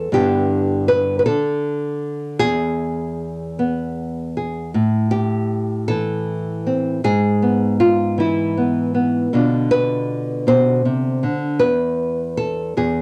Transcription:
Already playing: E2 A4 B4
0.12 G2 D3 B3 E4 G4
0.88 B4
1.19 B4
1.26 D3 A4
2.39 E2 G#4
3.59 B3
4.37 G#4
4.74 A2
5.11 G4
5.88 E3 A4
6.67 C4
7.04 G#2 G#4
7.42 B3
7.80 F4
8.18 E3 E4
8.57 B3
8.94 B3
9.33 B2 D3 D4 F4
9.71 B4
10.47 B2 C5
10.85 C3
11.23 D3
11.59 E2 B4
12.37 A4
12.77 E2 G#4

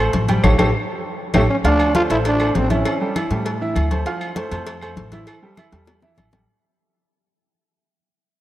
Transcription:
Already playing: A1
0.00 A3 A4 C5
0.13 A1, cowbell, high conga
0.28 G3 G4 G5, cowbell, high conga, low agogo
0.43 A1 G4 A4 C#5, cowbell, high conga, high timbale, claves
0.58 A1 G4 A4 C#5, cowbell, high conga, high timbale, claves
1.34 A1 A3 G4 A4 C#5, cowbell, high conga, high timbale, claves
1.50 C#4
1.64 D2 F3 D4 F4 F5, cowbell, high conga, low agogo
1.80 high conga, low agogo, claves
1.95 A3 F4 A4 C5, cowbell, high conga
2.10 A1 A3 E4 A4 C5, cowbell, high conga, low agogo
2.25 D4, cowbell, high conga, low agogo
2.40 A3 A4 C5, high conga, low agogo, claves
2.55 A1 C4, cowbell, high conga, low timbale
2.70 E3 C#4 E4 E5, cowbell, high conga, low agogo
2.85 cowbell, high conga, low agogo, claves
3.01 G3 G4 A4, high conga
3.16 E3 E4 E5, cowbell, high conga, low agogo, claves
3.31 A2 G3 G4 A4, cowbell, high conga
3.46 cowbell, high conga, low agogo
3.61 E3 E4 E5, high conga
3.76 D2, cowbell, high conga, low agogo, claves
3.91 A3 A4 C5, cowbell, high conga, low agogo
4.06 F3 F4 F5, cowbell, high conga, low agogo
4.21 high conga, low agogo, claves
4.36 A3 A4 C5, cowbell, high conga
4.51 F2 A3 A4 C5, cowbell, high conga, low agogo
4.66 cowbell, high conga, low agogo
4.81 A3 A4 C5, high conga, low agogo, claves
4.96 A1, cowbell, high conga
5.12 E3 E4 E5, cowbell, high conga, low agogo
5.27 cowbell, high conga, low agogo, claves
5.42 G3 G4 A4, high conga
5.57 E3 E4 E5, cowbell, high conga, low agogo, claves
5.72 E2 G3 G4 A4, cowbell, high conga
5.87 cowbell, high bongo, high conga, low agogo
6.02 E3 E4 E5, low bongo, high conga
6.17 A1, cowbell, low bongo, high conga, low agogo, claves
6.33 G3 G4 A4, cowbell, low bongo, high conga, low agogo

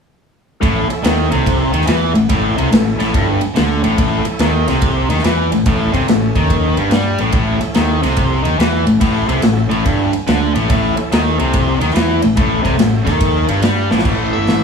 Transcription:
0.60 A1 A2 E4 A4 C#5 E5, kick, ride
0.90 E4 A4 C#5 E5, muted overdriven electric guitar stroke, muted fingered electric bass stroke, ride
1.04 D#2 D#3, snare, ride
1.31 C2 C3, ride
1.46 kick, ride
1.73 D#2 D#3, ride
1.81 snare
1.87 E2 E3, snare, ride
2.14 A1 A2, ride
2.29 A1 A2 E4 A4 C#5 E5, kick, ride
2.57 C2 C3 E4 A4 C#5 E5, ride
2.71 A1 A2, snare, ride
2.99 A1 A2, snare, ride
3.14 G1 G2, kick, ride
3.41 muted overdriven electric guitar stroke, muted fingered electric bass stroke, ride
3.56 D2 D3, snare, ride
3.84 A1 A2, ride
3.97 A1 A2 E4 A4 C#5 F#5, kick, ride
4.24 E4 A4 C#5 E5, muted fingered electric bass stroke, muted overdriven electric guitar stroke, ride
4.39 D#2 D#3, snare, ride
4.68 C2 C3, snare, ride
4.82 kick, ride
5.09 D#2 D#3, ride
5.19 snare
5.24 E2 E3, snare, ride
5.51 A1 A2, ride
5.66 A1 A2 E4 A4 C#5 E5, kick, ride
5.93 C2 C3 C#4 A4 C#5 E5, kick, ride
6.06 A1 A2, snare, ride
6.35 D#2 D#3, kick, ride
6.50 kick, ride
6.77 G1 G2, ride
6.90 G2 G3, snare, ride
7.18 A1 A2, ride
7.32 A1 A2 E4 A4 C#5 E5, kick, ride
7.59 E4 A4 C#5 E5, muted overdriven electric guitar stroke, muted fingered electric bass stroke, ride
7.75 D#2 D#3, snare, ride
8.03 C2 C3, snare, ride
8.17 kick, ride
8.43 D#2 D#3, ride
8.59 E2 E3, snare, ride
8.86 A1 A2, ride
9.00 A1 A2 E4 A4 C#5 E5, kick, ride
9.26 C2 C3 E4 A4 C#5 E5, ride
9.42 A1 A2, snare, ride
9.70 A1 A2, ride
9.85 G1 G2, kick, ride
10.13 muted overdriven electric guitar stroke, muted fingered electric bass stroke, ride
10.27 D2 D3, snare, ride
10.54 A1 A2, ride
10.67 A1 A2 E4 A4 C#5 E5, kick, ride
10.95 E4 A4 C#5 E5, muted overdriven electric guitar stroke, muted fingered electric bass stroke, ride
11.12 D#2 D#3, snare, ride
11.39 C2 C3, ride
11.54 kick, ride
11.80 D#2 D#3, ride
11.91 snare
11.95 E2 E3, snare, ride
12.22 A1 A2, ride
12.35 A1 A2 E4 A4 C#5 E5, kick, ride
12.64 C2 C3 A4 C#5 E5 G5, kick, ride
12.78 A1 A2, snare, ride
13.05 D#2 D#3, kick, snare, ride
13.21 kick, ride
13.48 G1 G2 A5, ride
13.62 G2 G3 F#5, snare, ride
13.90 A1 A2 E5, snare
13.99 snare
14.03 A1 A2 E3 A3 E4 A4 C#5 E5, kick, crash
14.33 G1 E5
14.47 A1, snare, open hi-hat

